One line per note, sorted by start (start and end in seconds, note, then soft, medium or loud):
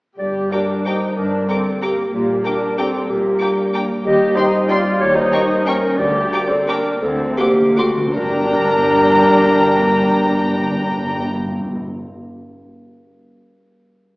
0.19 0.46 G1 soft
0.19 0.46 G2 soft
0.19 1.16 G2 soft
0.19 0.50 G4 soft
0.19 0.54 D5 medium
0.35 1.01 G3 soft
0.51 0.64 A#3 soft
0.51 0.86 D4 soft
0.51 0.64 G4 soft
0.51 0.85 G4 soft
0.51 0.88 A#4 medium
0.51 0.59 G5 soft
0.51 0.59 A#5 soft
0.51 0.60 D6 soft
0.69 1.65 A#4 soft
0.86 0.98 A#3 soft
0.86 1.18 D#4 soft
0.86 1.48 G4 soft
0.86 0.98 G4 soft
0.86 1.16 C5 medium
0.86 0.94 G5 soft
0.86 0.94 A#5 soft
0.86 0.94 D6 soft
1.02 1.97 G3 soft
1.17 1.44 G1 soft
1.17 2.15 G2 soft
1.17 1.44 G2 medium
1.17 1.49 D4 medium
1.17 1.48 A#4 medium
1.33 2.15 D3 soft
1.49 1.61 A#3 soft
1.49 1.82 C4 medium
1.49 1.81 G4 soft
1.49 1.61 G4 soft
1.49 1.82 A4 medium
1.49 1.57 G5 soft
1.49 1.57 A#5 soft
1.49 1.58 D6 soft
1.66 4.07 A#4 soft
1.82 2.13 A#3 soft
1.82 1.94 A#3 soft
1.82 2.13 G4 medium
1.82 1.94 G4 soft
1.82 1.90 G5 soft
1.82 1.90 A#5 soft
1.82 1.90 D6 soft
1.98 2.28 G3 soft
2.13 2.40 A#1 medium
2.13 2.40 A#2 medium
2.13 3.08 A#2 soft
2.13 2.45 A#3 medium
2.13 2.46 G4 medium
2.29 2.93 G3 soft
2.45 2.79 D4 medium
2.45 2.58 D4 soft
2.45 2.77 G4 soft
2.45 2.58 G4 soft
2.45 2.78 A#4 medium
2.45 2.53 G5 soft
2.45 2.53 A#5 soft
2.45 2.53 D6 soft
2.62 3.56 D5 soft
2.77 3.10 C4 medium
2.77 2.89 D4 soft
2.77 2.89 G4 soft
2.77 3.39 G4 soft
2.77 3.11 A4 medium
2.77 2.87 G5 soft
2.77 2.87 A#5 soft
2.77 2.87 D6 soft
2.94 3.89 G3 soft
3.09 3.36 A#1 medium
3.09 4.07 A#2 medium
3.09 3.36 A#2 medium
3.09 3.89 A#3 medium
3.09 3.90 G4 medium
3.24 4.07 A#3 soft
3.40 3.53 D4 soft
3.40 3.53 G4 medium
3.40 3.49 G5 soft
3.40 3.49 A#5 soft
3.40 3.48 D6 soft
3.57 4.07 D5 soft
3.74 3.86 D4 medium
3.74 4.35 G4 soft
3.74 3.85 G4 soft
3.74 3.82 G5 medium
3.74 3.82 A#5 soft
3.74 3.82 D6 soft
3.90 4.19 G3 soft
4.05 4.31 D#2 medium
4.05 5.00 D#3 medium
4.05 4.35 G4 medium
4.05 4.37 D#5 medium
4.20 4.84 G3 soft
4.36 4.48 C4 soft
4.36 4.70 D#4 medium
4.36 4.48 G4 medium
4.36 4.71 C5 medium
4.36 4.45 G5 soft
4.36 4.44 C6 soft
4.36 4.45 C6 soft
4.53 5.02 C5 medium
4.68 4.80 C4 medium
4.68 5.00 F4 medium
4.68 4.80 G4 medium
4.68 5.31 G4 medium
4.68 5.00 D5 medium
4.68 4.77 G5 medium
4.68 4.77 C6 soft
4.68 4.78 C6 medium
4.86 7.03 G3 soft
5.00 5.27 D#2 medium
5.00 6.00 D#3 medium
5.00 5.16 G4 medium
5.00 5.17 C#5 loud
5.16 5.82 A#3 medium
5.16 5.66 D#4 medium
5.16 5.67 C5 medium
5.32 5.44 A#3 medium
5.32 5.44 G4 medium
5.32 5.65 G4 soft
5.32 5.40 G5 soft
5.32 5.40 A#5 soft
5.32 5.41 C#6 medium
5.49 6.49 A#4 medium
5.66 5.78 A#3 medium
5.66 5.99 C#4 medium
5.66 5.78 G4 medium
5.66 6.31 G4 medium
5.66 5.99 A#4 medium
5.66 5.74 G5 medium
5.66 5.74 A#5 medium
5.66 5.75 C#6 medium
5.83 6.14 A#3 soft
5.98 6.26 D2 medium
5.98 6.27 D2 medium
5.98 7.01 D3 medium
5.98 6.47 D3 medium
5.98 6.50 G4 medium
5.98 6.50 D5 medium
6.15 6.84 A#3 soft
6.32 6.45 A#3 medium
6.32 6.67 G4 soft
6.32 6.45 G4 medium
6.32 6.40 G5 soft
6.32 6.40 A#5 soft
6.32 6.41 D6 medium
6.49 6.68 C4 medium
6.49 6.69 A4 medium
6.49 7.04 A#4 medium
6.68 6.80 A#3 medium
6.68 7.02 D4 medium
6.68 6.80 G4 medium
6.68 7.01 A#4 medium
6.68 6.77 G5 medium
6.68 6.76 A#5 medium
6.68 6.76 D6 medium
6.85 7.03 A#3 soft
7.01 7.32 D2 medium
7.01 8.18 D3 medium
7.01 7.10 D3 soft
7.01 7.37 C4 medium
7.01 7.39 A4 medium
7.19 7.25 D3 soft
7.19 7.96 C4 soft
7.38 7.77 A#3 medium
7.38 7.52 C4 medium
7.38 7.76 F#4 soft
7.38 7.52 F#4 medium
7.38 7.79 G4 medium
7.38 7.46 F#5 soft
7.38 7.46 C6 soft
7.38 7.46 D6 medium
7.44 7.52 D3 soft
7.53 7.61 D3 soft
7.58 8.18 C5 medium
7.62 7.70 D3 medium
7.71 7.79 D3 medium
7.76 8.16 A3 medium
7.76 7.91 C4 medium
7.76 7.91 F#4 medium
7.76 8.17 F#4 soft
7.76 8.15 F#4 medium
7.76 7.86 F#5 soft
7.76 7.85 C6 medium
7.76 7.86 D6 medium
7.89 7.96 D3 medium
7.97 8.06 D3 medium
7.97 8.17 C4 soft
8.07 8.14 D3 medium
8.15 11.26 G1 medium
8.15 11.26 G2 medium
8.15 12.06 G2 soft
8.15 8.24 G2 medium
8.15 11.26 D4 medium
8.15 11.27 D4 medium
8.15 11.26 G4 medium
8.15 11.26 A#4 medium
8.15 11.26 G5 medium
8.15 11.26 A#5 medium
8.23 8.31 G2 medium
8.23 11.88 G3 medium
8.30 8.38 G2 medium
8.30 11.95 D4 medium
8.38 8.45 G2 medium
8.44 8.52 G2 medium
8.44 12.09 D5 medium
8.51 8.59 G2 medium
8.51 12.14 G5 soft
8.59 8.66 G2 medium
8.66 8.73 G2 medium
8.73 8.80 G2 medium
8.81 8.88 G2 medium
8.88 8.95 G2 medium
8.95 9.02 G2 medium
9.02 9.09 G2 medium
9.10 9.17 G2 medium
9.17 9.23 G2 medium
9.23 9.30 G2 medium
9.30 9.38 G2 medium
9.38 9.45 G2 medium
9.45 9.52 G2 medium
9.52 9.60 G2 medium
9.60 9.67 G2 medium
9.67 9.74 G2 medium
9.75 9.82 G2 medium
9.82 9.89 G2 medium
9.89 9.96 G2 medium
9.96 10.04 G2 medium
10.04 10.11 G2 medium
10.11 10.18 G2 medium
10.18 10.25 G2 medium
10.25 10.32 G2 medium
10.33 10.40 G2 medium
10.41 10.47 G2 medium
10.47 10.55 G2 medium
10.55 10.62 G2 medium
10.62 10.70 G2 medium
10.70 10.77 G2 medium
10.77 10.84 G2 medium
10.84 10.91 G2 medium
10.91 10.98 G2 medium
10.98 11.05 G2 medium
11.05 11.12 G2 medium
11.12 11.19 G2 medium
11.19 11.26 G2 medium
11.26 11.33 G2 medium
11.33 11.40 G2 medium
11.40 11.47 G2 medium
11.47 11.54 G2 medium
11.54 11.61 G2 medium
11.61 11.68 G2 medium
11.68 11.76 G2 medium
11.76 11.83 G2 medium